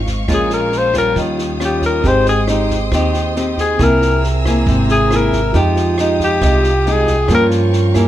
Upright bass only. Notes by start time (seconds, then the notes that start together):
Already playing: G#1
0.28 A#1
1.16 D#2
2.04 G#1
2.92 D#2
3.79 C2
4.66 G#1
5.54 F2
6.42 C2
7.29 G2